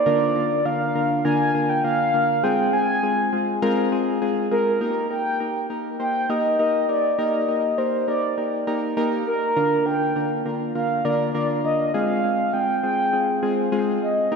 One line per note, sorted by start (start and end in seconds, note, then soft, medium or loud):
0.00 0.67 D5 loud
0.06 0.32 D3 loud
0.06 0.32 A#3 medium
0.06 0.32 D4 medium
0.06 0.32 F4 medium
0.06 0.32 A#4 loud
0.36 0.62 D3 medium
0.36 0.62 A#3 medium
0.36 0.62 D4 medium
0.36 0.62 F4 medium
0.36 0.62 A#4 medium
0.65 0.92 D3 medium
0.65 0.92 A#3 medium
0.65 0.92 D4 medium
0.65 0.92 F4 medium
0.65 0.92 A#4 medium
0.65 1.24 F5 loud
0.95 1.22 D3 medium
0.95 1.22 A#3 medium
0.95 1.22 D4 medium
0.95 1.22 F4 medium
0.95 1.22 A#4 medium
1.25 1.51 D3 loud
1.25 1.51 A#3 medium
1.25 1.51 D4 medium
1.25 1.51 F4 medium
1.25 1.51 A#4 loud
1.25 1.71 G#5 loud
1.55 1.81 D3 medium
1.55 1.81 A#3 medium
1.55 1.81 D4 medium
1.55 1.81 F4 medium
1.55 1.81 A#4 medium
1.69 1.84 G5 loud
1.84 2.11 D3 medium
1.84 2.11 A#3 medium
1.84 2.11 D4 medium
1.84 2.11 F4 medium
1.84 2.11 A#4 medium
1.84 2.45 F5 loud
2.14 2.40 D3 medium
2.14 2.40 A#3 medium
2.14 2.40 D4 medium
2.14 2.40 F4 medium
2.14 2.40 A#4 medium
2.43 2.70 G#3 loud
2.43 2.70 C4 medium
2.43 2.70 F4 medium
2.43 2.70 G#4 loud
2.43 2.73 G5 loud
2.73 3.00 G#3 medium
2.73 3.00 C4 medium
2.73 3.00 F4 medium
2.73 3.00 G#4 medium
2.73 3.58 G#5 loud
3.03 3.29 G#3 medium
3.03 3.29 C4 medium
3.03 3.29 F4 medium
3.03 3.29 G#4 medium
3.33 3.59 G#3 medium
3.33 3.59 C4 medium
3.33 3.59 F4 medium
3.33 3.59 G#4 medium
3.62 3.89 G#3 loud
3.62 3.89 C4 loud
3.62 3.89 F4 loud
3.62 3.89 A#4 loud
3.92 4.18 G#3 medium
3.92 4.18 C4 medium
3.92 4.18 F4 medium
3.92 4.18 G#4 loud
4.22 4.48 G#3 medium
4.22 4.48 C4 medium
4.22 4.48 F4 medium
4.22 4.48 G#4 loud
4.51 4.78 G#3 medium
4.51 4.78 C4 medium
4.51 4.78 F4 medium
4.51 4.78 G#4 loud
4.51 5.07 A#4 medium
4.81 5.07 A#3 medium
4.81 5.07 D#4 medium
4.81 5.07 G4 medium
4.81 5.07 A#4 loud
5.10 5.37 A#3 medium
5.10 5.37 D#4 medium
5.10 5.37 G4 medium
5.10 5.37 A#4 medium
5.10 5.66 G5 loud
5.40 5.67 A#3 medium
5.40 5.67 D#4 medium
5.40 5.67 G4 medium
5.40 5.67 A#4 medium
5.70 5.97 A#3 medium
5.70 5.97 D#4 medium
5.70 5.97 G4 medium
5.70 5.97 A#4 medium
6.00 6.26 A#3 medium
6.00 6.26 D#4 medium
6.00 6.26 G4 medium
6.00 6.26 C5 medium
6.00 6.31 G5 loud
6.29 6.56 A#3 loud
6.29 6.56 D#4 medium
6.29 6.56 G4 medium
6.29 6.56 A#4 loud
6.29 6.59 D#5 loud
6.59 6.86 A#3 medium
6.59 6.86 D#4 medium
6.59 6.86 G4 medium
6.59 6.86 A#4 loud
6.59 6.87 D#5 loud
6.89 7.15 A#3 medium
6.89 7.15 D#4 medium
6.89 7.15 G4 medium
6.89 7.15 A#4 medium
6.89 7.20 D5 medium
7.19 7.45 A#3 loud
7.19 7.45 D#4 medium
7.19 7.45 G4 medium
7.19 7.45 A#4 loud
7.19 7.79 D#5 loud
7.48 7.75 A#3 medium
7.48 7.75 D#4 medium
7.48 7.75 G4 medium
7.48 7.75 A#4 medium
7.78 8.05 A#3 medium
7.78 8.05 D#4 medium
7.78 8.05 G4 medium
7.78 8.05 A#4 medium
7.78 8.07 C5 medium
8.08 8.34 A#3 medium
8.08 8.34 D#4 medium
8.08 8.34 G4 medium
8.08 8.34 A#4 medium
8.08 8.63 D5 medium
8.37 8.64 A#3 medium
8.37 8.64 D#4 medium
8.37 8.64 G4 medium
8.37 8.64 A#4 medium
8.67 8.94 A#3 medium
8.67 8.94 D#4 medium
8.67 8.94 G4 medium
8.67 8.94 A#4 loud
8.97 9.23 A#3 loud
8.97 9.23 D#4 loud
8.97 9.23 G4 loud
8.97 9.23 A#4 loud
9.26 9.53 A#3 medium
9.26 9.53 D#4 medium
9.26 9.53 G4 medium
9.26 9.87 A#4 medium
9.26 9.53 A#4 medium
9.56 9.83 D3 loud
9.56 9.83 A#3 medium
9.56 9.83 D4 medium
9.56 9.83 F4 medium
9.56 9.83 A#4 loud
9.86 10.12 D3 medium
9.86 10.12 A#3 medium
9.86 10.12 D4 medium
9.86 10.12 F4 medium
9.86 10.12 A#4 medium
9.86 10.45 G5 loud
10.16 10.42 D3 medium
10.16 10.42 A#3 medium
10.16 10.42 D4 medium
10.16 10.42 F4 medium
10.16 10.42 A#4 medium
10.46 10.72 D3 medium
10.46 10.72 A#3 medium
10.46 10.72 D4 medium
10.46 10.72 F4 medium
10.46 10.72 A#4 medium
10.75 11.02 D3 medium
10.75 11.02 A#3 medium
10.75 11.02 D4 medium
10.75 11.02 F4 medium
10.75 11.02 A#4 medium
10.75 11.06 F5 medium
11.05 11.31 D3 loud
11.05 11.31 A#3 medium
11.05 11.31 D4 medium
11.05 11.31 F4 medium
11.05 11.31 A#4 loud
11.05 11.34 D5 medium
11.34 11.61 D3 medium
11.34 11.61 A#3 medium
11.34 11.61 D4 medium
11.34 11.61 F4 medium
11.34 11.61 A#4 loud
11.34 11.48 D5 medium
11.64 11.91 D3 medium
11.64 11.91 A#3 medium
11.64 11.91 D4 medium
11.64 11.91 F4 medium
11.64 11.91 A#4 medium
11.64 11.92 D#5 medium
11.94 12.21 G#3 medium
11.94 12.21 C4 medium
11.94 12.21 F4 medium
11.94 12.21 G#4 loud
11.94 12.55 F5 loud
12.24 12.50 G#3 medium
12.24 12.50 C4 medium
12.24 12.50 F4 medium
12.24 12.50 G#4 medium
12.53 12.80 G#3 medium
12.53 12.80 C4 medium
12.53 12.80 F4 medium
12.53 12.80 G#4 medium
12.53 12.82 G5 loud
12.83 13.10 G#3 medium
12.83 13.10 C4 medium
12.83 13.10 F4 medium
12.83 13.10 G#4 medium
12.83 13.38 G5 loud
13.13 13.39 G#3 medium
13.13 13.39 C4 medium
13.13 13.39 F4 medium
13.13 13.39 G#4 medium
13.43 13.69 G#3 medium
13.43 13.69 C4 medium
13.43 13.69 F4 medium
13.43 13.69 G#4 loud
13.72 13.99 G#3 loud
13.72 13.99 C4 loud
13.72 13.99 F4 loud
13.72 13.99 G#4 loud
14.02 14.28 G#3 medium
14.02 14.28 C4 medium
14.02 14.28 F4 medium
14.02 14.28 G#4 medium
14.02 14.36 D#5 medium
14.32 14.36 A#3 medium
14.32 14.36 D#4 medium
14.32 14.36 G4 medium
14.32 14.36 A#4 loud